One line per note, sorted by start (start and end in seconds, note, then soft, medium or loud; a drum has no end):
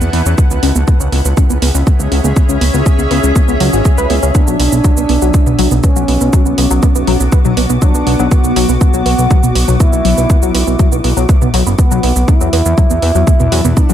0.00 0.10 E2 medium
0.00 0.05 B3 medium
0.00 1.82 E4 medium
0.00 1.88 B4 medium
0.00 1.97 F#5 medium
0.00 0.38 A5 medium
0.00 shaker soft
0.13 0.22 E2 loud
0.13 0.20 B3 medium
0.13 open hi-hat loud
0.26 0.35 E2 medium
0.26 0.35 C#4 medium
0.26 shaker soft
0.38 0.42 B3 medium
0.38 4.35 C#4 medium
0.38 kick loud
0.38 shaker soft
0.51 0.59 C#2 medium
0.51 0.57 B3 medium
0.51 shaker medium
0.62 0.72 C#2 loud
0.62 0.73 C#4 medium
0.62 6.09 G#4 medium
0.62 open hi-hat medium
0.73 0.84 C#2 medium
0.73 0.79 B3 medium
0.73 6.18 E5 medium
0.73 shaker medium
0.88 0.94 B3 medium
0.88 kick loud
0.88 shaker medium
0.92 4.35 C#5 medium
1.00 1.09 C#2 medium
1.00 1.10 C#4 medium
1.00 shaker medium
1.12 1.22 C#2 medium
1.12 1.16 B3 medium
1.12 open hi-hat medium
1.25 1.34 C#2 medium
1.25 1.31 B3 medium
1.25 shaker medium
1.37 1.47 C#4 medium
1.37 kick loud
1.37 shaker medium
1.50 1.59 C#2 medium
1.50 1.54 B3 medium
1.50 shaker soft
1.62 1.71 C#2 loud
1.62 1.69 B3 medium
1.62 open hi-hat loud
1.75 1.83 C#2 medium
1.75 1.84 C#4 medium
1.75 shaker soft
1.87 1.91 B3 medium
1.87 kick loud
1.87 shaker soft
1.99 2.08 C#2 medium
1.99 2.06 B3 medium
1.99 shaker medium
2.12 2.21 C#2 medium
2.12 2.22 C#4 medium
2.12 open hi-hat medium
2.24 2.33 C#2 medium
2.24 2.28 B3 medium
2.24 shaker soft
2.36 2.43 B3 medium
2.36 kick loud
2.36 shaker medium
2.49 2.58 C#2 medium
2.49 2.58 C#4 medium
2.49 shaker medium
2.61 2.70 C#2 medium
2.61 2.65 B3 medium
2.61 open hi-hat medium
2.74 2.83 C#2 medium
2.74 2.80 B3 medium
2.74 shaker medium
2.86 2.96 C#4 medium
2.86 kick loud
2.86 shaker medium
2.99 3.07 C#2 medium
2.99 3.03 B3 medium
2.99 shaker medium
3.11 3.20 C#2 loud
3.11 3.17 B3 medium
3.11 open hi-hat loud
3.24 3.32 C#2 medium
3.24 3.33 C#4 medium
3.24 shaker medium
3.36 3.40 B3 medium
3.36 kick loud
3.36 shaker medium
3.48 3.57 C#2 medium
3.48 3.55 B3 medium
3.48 shaker medium
3.60 3.70 C#2 loud
3.60 3.70 F#3 loud
3.60 open hi-hat loud
3.73 3.82 G#1 medium
3.73 3.77 F#4 medium
3.73 shaker soft
3.85 3.95 G#4 medium
3.85 kick loud
3.85 shaker medium
3.98 4.07 C#2 medium
3.98 4.07 B4 loud
3.98 shaker medium
4.10 4.19 C#2 loud
4.10 4.14 B3 medium
4.10 open hi-hat loud
4.23 4.31 C#2 medium
4.23 4.29 C#4 loud
4.23 shaker medium
4.35 4.41 B3 medium
4.35 13.27 B3 medium
4.35 5.74 D4 loud
4.35 kick loud
4.35 shaker medium
4.48 4.56 B1 medium
4.48 4.57 F#3 medium
4.48 shaker medium
4.60 4.69 B1 medium
4.60 4.64 B3 medium
4.60 open hi-hat loud
4.72 4.81 B1 medium
4.72 4.79 B3 medium
4.72 13.87 F#4 medium
4.72 shaker medium
4.84 4.94 F#3 loud
4.84 kick loud
4.84 shaker medium
4.97 5.06 B1 medium
4.97 5.01 B3 medium
4.97 shaker medium
5.04 13.87 D6 medium
5.09 5.18 B1 medium
5.09 5.16 B3 medium
5.09 open hi-hat loud
5.22 5.31 B1 medium
5.22 5.31 F#3 loud
5.22 shaker medium
5.34 5.38 B3 medium
5.34 kick loud
5.34 shaker medium
5.47 5.55 B1 medium
5.47 5.53 B3 medium
5.47 mid tom medium
5.47 shaker medium
5.59 5.68 B1 loud
5.59 5.69 F#3 loud
5.59 open hi-hat loud
5.71 5.80 B1 medium
5.71 5.75 B3 medium
5.71 mid tom medium
5.71 shaker medium
5.83 5.90 B3 medium
5.83 7.23 C#4 loud
5.83 kick loud
5.83 shaker medium
5.96 6.05 B1 medium
5.96 6.06 F#3 loud
5.96 shaker medium
6.08 6.18 B1 medium
6.08 6.12 B3 medium
6.08 open hi-hat loud
6.21 6.30 B1 medium
6.21 6.27 B3 medium
6.21 shaker medium
6.33 6.43 F#3 loud
6.33 kick loud
6.33 shaker medium
6.46 6.55 B1 medium
6.46 6.50 B3 medium
6.46 shaker medium
6.58 6.67 B1 medium
6.58 6.65 B3 medium
6.58 open hi-hat loud
6.71 6.79 B1 medium
6.71 6.80 F#3 medium
6.71 shaker medium
6.83 6.87 B3 medium
6.83 kick loud
6.83 shaker medium
6.95 7.04 B1 medium
6.95 7.02 B3 medium
6.95 shaker medium
7.07 7.17 B1 medium
7.07 7.17 F#3 loud
7.07 open hi-hat loud
7.20 7.29 B1 medium
7.20 7.24 B3 medium
7.20 shaker medium
7.32 7.39 B3 medium
7.32 kick loud
7.32 shaker medium
7.45 7.54 B1 medium
7.45 7.54 F#3 loud
7.45 mid tom medium
7.45 shaker medium
7.57 7.66 B1 loud
7.57 7.61 B3 medium
7.57 open hi-hat loud
7.70 7.78 B1 medium
7.70 7.76 B3 medium
7.70 shaker medium
7.82 7.92 F#3 loud
7.82 8.28 D4 medium
7.82 kick loud
7.82 shaker medium
7.95 8.03 B1 medium
7.95 7.98 B3 medium
7.95 shaker medium
8.07 8.16 B1 loud
8.07 8.13 B3 medium
8.07 open hi-hat loud
8.19 8.28 B1 medium
8.19 8.29 F#3 loud
8.19 shaker medium
8.31 8.35 B3 medium
8.31 9.71 F#4 loud
8.31 kick loud
8.31 shaker medium
8.44 8.53 B1 medium
8.44 8.51 B3 medium
8.44 shaker medium
8.56 8.65 B1 loud
8.56 8.66 F#3 loud
8.56 open hi-hat loud
8.69 8.78 B1 medium
8.69 8.73 B3 medium
8.69 shaker medium
8.81 8.88 B3 medium
8.81 kick loud
8.81 shaker medium
8.94 9.02 B1 medium
8.94 9.03 F#3 loud
8.94 shaker medium
9.06 9.15 B1 loud
9.06 9.10 B3 medium
9.06 open hi-hat loud
9.19 9.27 B1 medium
9.19 9.25 B3 medium
9.19 shaker medium
9.31 9.41 F#3 loud
9.31 kick loud
9.31 shaker medium
9.43 9.52 B1 medium
9.43 9.47 B3 medium
9.43 mid tom medium
9.43 shaker medium
9.55 9.65 B1 loud
9.55 9.62 B3 medium
9.55 open hi-hat loud
9.68 9.77 B1 medium
9.68 9.77 F#3 loud
9.68 mid tom medium
9.68 shaker medium
9.80 9.84 B3 medium
9.80 11.19 E4 loud
9.80 kick loud
9.80 shaker medium
9.93 10.02 B1 medium
9.93 9.99 B3 medium
9.93 shaker medium
10.05 10.14 B1 medium
10.05 10.15 F#3 loud
10.05 open hi-hat loud
10.18 10.26 B1 medium
10.18 10.21 B3 medium
10.18 shaker medium
10.30 10.36 B3 medium
10.30 kick loud
10.30 shaker medium
10.42 10.51 B1 medium
10.42 10.52 F#3 loud
10.42 shaker medium
10.55 10.64 B1 loud
10.55 10.59 B3 medium
10.55 open hi-hat loud
10.67 10.76 B1 medium
10.67 10.74 B3 medium
10.67 shaker soft
10.79 10.89 F#3 loud
10.79 kick loud
10.79 shaker medium
10.92 11.01 B1 medium
10.92 10.96 B3 medium
10.92 shaker medium
11.04 11.13 B1 medium
11.04 11.11 B3 medium
11.04 open hi-hat loud
11.17 11.26 B1 medium
11.17 11.26 F#3 loud
11.17 shaker medium
11.29 11.33 B3 medium
11.29 kick loud
11.29 shaker medium
11.42 11.50 B1 medium
11.42 11.48 B3 medium
11.42 mid tom medium
11.42 shaker medium
11.54 11.63 B1 loud
11.54 11.64 F#3 loud
11.54 open hi-hat loud
11.67 11.75 F#1 medium
11.67 11.70 B3 medium
11.67 shaker soft
11.78 12.30 B3 medium
11.78 11.85 B3 medium
11.78 kick loud
11.78 shaker medium
11.91 12.00 B1 medium
11.91 12.01 F#3 loud
11.91 shaker medium
12.03 12.12 B1 medium
12.03 12.07 B3 medium
12.03 open hi-hat loud
12.16 12.25 B1 medium
12.16 12.22 B3 medium
12.16 shaker soft
12.28 12.35 B3 medium
12.28 13.78 E4 loud
12.28 13.94 E4 medium
12.28 kick loud
12.28 shaker soft
12.41 12.49 E2 medium
12.41 12.50 F#3 loud
12.41 shaker medium
12.47 13.94 B4 medium
12.53 12.62 E2 loud
12.53 12.57 B3 medium
12.53 open hi-hat loud
12.62 12.74 E2 medium
12.62 12.72 B3 medium
12.62 13.94 F#5 medium
12.62 shaker soft
12.74 12.88 F#3 loud
12.74 13.94 A5 medium
12.74 kick loud
12.74 shaker soft
12.90 12.99 E2 medium
12.90 12.94 B3 medium
12.90 shaker medium
13.02 13.12 E2 medium
13.02 13.09 B3 medium
13.02 open hi-hat loud
13.15 13.24 E2 medium
13.15 13.25 F#3 loud
13.15 shaker medium
13.27 13.31 B3 medium
13.27 kick loud
13.27 shaker medium
13.40 13.49 E2 medium
13.40 13.46 B3 medium
13.40 mid tom medium
13.40 shaker medium
13.52 13.61 E2 loud
13.52 13.62 F#3 loud
13.52 open hi-hat loud
13.65 13.74 E2 medium
13.65 13.69 B3 medium
13.65 mid tom medium
13.65 shaker soft
13.77 13.83 B3 medium
13.77 13.94 D4 loud
13.77 kick loud
13.77 shaker soft
13.89 13.94 E2 medium
13.89 13.94 F#3 loud
13.89 shaker medium